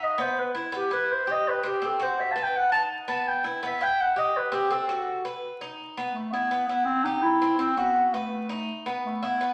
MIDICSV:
0, 0, Header, 1, 3, 480
1, 0, Start_track
1, 0, Key_signature, 1, "minor"
1, 0, Tempo, 361882
1, 475, Time_signature, 4, 2, 24, 8
1, 12647, End_track
2, 0, Start_track
2, 0, Title_t, "Clarinet"
2, 0, Program_c, 0, 71
2, 43, Note_on_c, 0, 75, 83
2, 267, Note_on_c, 0, 72, 91
2, 287, Note_off_c, 0, 75, 0
2, 519, Note_on_c, 0, 71, 78
2, 539, Note_off_c, 0, 72, 0
2, 734, Note_off_c, 0, 71, 0
2, 742, Note_on_c, 0, 64, 42
2, 954, Note_off_c, 0, 64, 0
2, 1005, Note_on_c, 0, 67, 81
2, 1220, Note_off_c, 0, 67, 0
2, 1232, Note_on_c, 0, 71, 90
2, 1489, Note_on_c, 0, 72, 86
2, 1509, Note_off_c, 0, 71, 0
2, 1737, Note_on_c, 0, 75, 102
2, 1757, Note_off_c, 0, 72, 0
2, 1967, Note_on_c, 0, 71, 89
2, 1986, Note_off_c, 0, 75, 0
2, 2181, Note_off_c, 0, 71, 0
2, 2204, Note_on_c, 0, 67, 85
2, 2457, Note_on_c, 0, 69, 74
2, 2477, Note_off_c, 0, 67, 0
2, 2666, Note_off_c, 0, 69, 0
2, 2678, Note_on_c, 0, 72, 87
2, 2916, Note_on_c, 0, 76, 82
2, 2936, Note_off_c, 0, 72, 0
2, 3070, Note_on_c, 0, 81, 94
2, 3090, Note_off_c, 0, 76, 0
2, 3222, Note_on_c, 0, 79, 91
2, 3242, Note_off_c, 0, 81, 0
2, 3398, Note_on_c, 0, 78, 93
2, 3417, Note_off_c, 0, 79, 0
2, 3599, Note_off_c, 0, 78, 0
2, 3607, Note_on_c, 0, 81, 120
2, 3747, Note_off_c, 0, 81, 0
2, 4103, Note_on_c, 0, 81, 87
2, 4348, Note_on_c, 0, 79, 86
2, 4368, Note_off_c, 0, 81, 0
2, 4572, Note_off_c, 0, 79, 0
2, 4599, Note_on_c, 0, 71, 50
2, 4812, Note_off_c, 0, 71, 0
2, 4854, Note_on_c, 0, 76, 96
2, 5070, Note_on_c, 0, 79, 115
2, 5090, Note_off_c, 0, 76, 0
2, 5312, Note_on_c, 0, 78, 97
2, 5332, Note_off_c, 0, 79, 0
2, 5533, Note_off_c, 0, 78, 0
2, 5544, Note_on_c, 0, 75, 100
2, 5792, Note_on_c, 0, 71, 86
2, 5812, Note_off_c, 0, 75, 0
2, 6001, Note_off_c, 0, 71, 0
2, 6009, Note_on_c, 0, 67, 81
2, 6243, Note_on_c, 0, 69, 76
2, 6263, Note_off_c, 0, 67, 0
2, 6959, Note_off_c, 0, 69, 0
2, 8147, Note_on_c, 0, 57, 86
2, 8374, Note_off_c, 0, 57, 0
2, 8387, Note_on_c, 0, 59, 83
2, 8837, Note_off_c, 0, 59, 0
2, 8859, Note_on_c, 0, 59, 87
2, 9081, Note_off_c, 0, 59, 0
2, 9088, Note_on_c, 0, 60, 102
2, 9337, Note_on_c, 0, 63, 114
2, 9357, Note_off_c, 0, 60, 0
2, 9570, Note_off_c, 0, 63, 0
2, 9578, Note_on_c, 0, 64, 98
2, 10032, Note_off_c, 0, 64, 0
2, 10053, Note_on_c, 0, 60, 85
2, 10286, Note_off_c, 0, 60, 0
2, 10307, Note_on_c, 0, 59, 92
2, 10795, Note_on_c, 0, 57, 84
2, 10815, Note_off_c, 0, 59, 0
2, 11514, Note_off_c, 0, 57, 0
2, 12023, Note_on_c, 0, 57, 81
2, 12253, Note_on_c, 0, 59, 84
2, 12273, Note_off_c, 0, 57, 0
2, 12647, Note_off_c, 0, 59, 0
2, 12647, End_track
3, 0, Start_track
3, 0, Title_t, "Cuban tres"
3, 0, Program_c, 1, 25
3, 0, Note_on_c, 1, 63, 67
3, 223, Note_off_c, 1, 63, 0
3, 239, Note_on_c, 1, 59, 85
3, 702, Note_off_c, 1, 59, 0
3, 724, Note_on_c, 1, 64, 78
3, 952, Note_off_c, 1, 64, 0
3, 958, Note_on_c, 1, 59, 85
3, 1189, Note_off_c, 1, 59, 0
3, 1206, Note_on_c, 1, 64, 73
3, 1666, Note_off_c, 1, 64, 0
3, 1689, Note_on_c, 1, 67, 63
3, 2148, Note_off_c, 1, 67, 0
3, 2168, Note_on_c, 1, 60, 81
3, 2394, Note_off_c, 1, 60, 0
3, 2410, Note_on_c, 1, 60, 79
3, 2636, Note_off_c, 1, 60, 0
3, 2647, Note_on_c, 1, 66, 77
3, 3107, Note_off_c, 1, 66, 0
3, 3127, Note_on_c, 1, 71, 72
3, 3587, Note_off_c, 1, 71, 0
3, 3608, Note_on_c, 1, 63, 67
3, 4067, Note_off_c, 1, 63, 0
3, 4085, Note_on_c, 1, 59, 86
3, 4546, Note_off_c, 1, 59, 0
3, 4566, Note_on_c, 1, 64, 75
3, 4793, Note_off_c, 1, 64, 0
3, 4812, Note_on_c, 1, 59, 89
3, 5036, Note_off_c, 1, 59, 0
3, 5050, Note_on_c, 1, 64, 76
3, 5509, Note_off_c, 1, 64, 0
3, 5521, Note_on_c, 1, 67, 70
3, 5984, Note_off_c, 1, 67, 0
3, 5994, Note_on_c, 1, 60, 88
3, 6227, Note_off_c, 1, 60, 0
3, 6243, Note_on_c, 1, 60, 86
3, 6472, Note_off_c, 1, 60, 0
3, 6487, Note_on_c, 1, 66, 77
3, 6947, Note_off_c, 1, 66, 0
3, 6963, Note_on_c, 1, 71, 76
3, 7425, Note_off_c, 1, 71, 0
3, 7444, Note_on_c, 1, 63, 68
3, 7905, Note_off_c, 1, 63, 0
3, 7925, Note_on_c, 1, 59, 83
3, 8153, Note_off_c, 1, 59, 0
3, 8403, Note_on_c, 1, 64, 73
3, 8632, Note_off_c, 1, 64, 0
3, 8637, Note_on_c, 1, 59, 78
3, 8869, Note_off_c, 1, 59, 0
3, 8880, Note_on_c, 1, 64, 69
3, 9343, Note_off_c, 1, 64, 0
3, 9359, Note_on_c, 1, 67, 72
3, 9823, Note_off_c, 1, 67, 0
3, 9837, Note_on_c, 1, 60, 81
3, 10050, Note_off_c, 1, 60, 0
3, 10066, Note_on_c, 1, 60, 79
3, 10303, Note_off_c, 1, 60, 0
3, 10310, Note_on_c, 1, 66, 73
3, 10777, Note_off_c, 1, 66, 0
3, 10796, Note_on_c, 1, 71, 77
3, 11261, Note_off_c, 1, 71, 0
3, 11267, Note_on_c, 1, 63, 74
3, 11736, Note_off_c, 1, 63, 0
3, 11754, Note_on_c, 1, 59, 78
3, 12219, Note_off_c, 1, 59, 0
3, 12237, Note_on_c, 1, 64, 74
3, 12468, Note_off_c, 1, 64, 0
3, 12479, Note_on_c, 1, 59, 80
3, 12647, Note_off_c, 1, 59, 0
3, 12647, End_track
0, 0, End_of_file